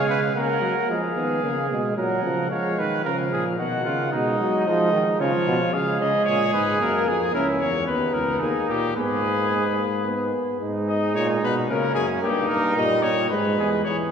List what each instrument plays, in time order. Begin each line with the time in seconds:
Already playing: bass trombone C#3, euphonium G#3, trumpet F5
0.09 trumpet B4
0.34 bass trombone C#3, euphonium A#3, trumpet A#4 F#5
0.41 trumpet G#5
0.48 trumpet F#5
0.62 bass trombone F#3
0.89 bass trombone F3, euphonium G#3, trumpet G#4 F5
1.16 bass trombone D#3, euphonium B3
1.43 bass trombone C#3, euphonium A#3
1.70 bass trombone B2, euphonium G#3
1.97 bass trombone A#2, euphonium F#3, trumpet A#4 F#5
2.24 bass trombone C#3, euphonium F3
2.50 bass trombone F3, euphonium G#3, trumpet C#5 F5
2.78 bass trombone D#3, trumpet B4
3.04 bass trombone C#3, euphonium F3, trumpet A#4 F5
3.32 bass trombone A#2, trumpet G#4
3.59 bass trombone B2, euphonium D#3, trumpet F#4 F#5
3.85 bass trombone C#3, trumpet F4
4.12 bass trombone B2, euphonium G#3, trumpet D#4 D#5
4.40 bass trombone F#3
4.66 bass trombone F3, euphonium G#3, trumpet D#4
4.92 bass trombone D#3
5.20 bass trombone C#3, euphonium F3, trumpet F4 C#5
5.47 bass trombone B2
5.73 bass trombone C#3, euphonium G#3, trumpet G#4 F5
6.00 bass trombone C#3, trumpet D#5
6.26 bass trombone A#2, trumpet C#5
6.53 bass trombone G#2, trumpet B4
6.80 bass trombone F#2, euphonium A#3, trumpet A#4
7.07 bass trombone F2, trumpet G#4
7.34 bass trombone C#2, euphonium C#4, trumpet E4 A#4
7.59 bass trombone E2, trumpet C#5
7.87 bass trombone D#2, euphonium B3, trumpet D#4 B4
8.14 bass trombone C#2, trumpet A#4
8.40 bass trombone D#2, euphonium A#3, trumpet G#4
8.69 bass trombone A#2, trumpet G4
8.96 bass trombone G#2, euphonium B3, trumpet G#4 B4
9.24 euphonium A#3
9.51 euphonium G#3
9.79 euphonium A#3
10.05 euphonium B3
10.61 bass trombone G#2, euphonium G#3, trumpet D#4
10.88 trumpet D#5
11.15 bass trombone A#2, trumpet C#5
11.43 bass trombone B2, trumpet B4
11.69 bass trombone C#3, euphonium A#3, trumpet C#4 A#4
11.94 bass trombone F#2, trumpet G#4
12.22 bass trombone G2, euphonium A#3, trumpet D#4 G4
12.49 bass trombone G2, trumpet A#4
12.77 bass trombone A#2, euphonium G3, trumpet D#5
13.03 bass trombone A#2, trumpet C#5
13.29 bass trombone G#2, euphonium G#3, trumpet D#4 B4
13.58 bass trombone E2, trumpet G#4
13.84 bass trombone E2, euphonium E3, trumpet G#4 C#5